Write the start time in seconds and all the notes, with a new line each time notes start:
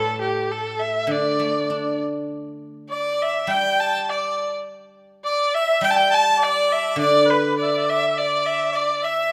Already playing: A2 G3 A4
0.21 G4
0.52 A4
0.80 E5
1.07 D3
1.11 D5
1.39 A3
1.70 D4
2.90 D5
3.22 E5
3.47 G3 G5
3.80 A5
4.09 D5
5.25 D5
5.54 E5
5.81 G3 G5
5.91 A5
5.96 G5
6.11 A5
6.40 D5
6.72 E5
6.96 D3 D5
7.00 D5
7.27 B4
7.56 D5
7.64 E5
7.71 D5
7.78 E5
7.87 D5 E5
8.08 E5
8.15 D5
8.46 E5
8.72 D5
9.03 E5